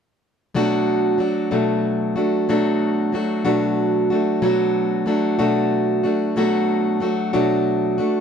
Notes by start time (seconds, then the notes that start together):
0.54 B2 F#3 A3 D4 F#4
1.18 F#3 A3 D4 F#4
1.51 B2 F#3 A3 D4 F#4
2.16 A3 D4 F#4
2.49 B2 F#3 A3 D4 F#4
3.12 F#3 A3 D4 F#4
3.45 B2 F#3 A3 D4 F#4
4.10 A3 D4 F#4
4.42 B2 F#3 A3 D4 F#4
5.06 F#3 A3 D4 F#4
5.39 B2 F#3 A3 D4 F#4
6.03 A3 D4 F#4
6.36 B2 F#3 A3 D4 F#4
7.00 F#3 A3 D4 F#4
7.33 B2 F#3 A3 D4 F#4
7.98 A3 D4 F#4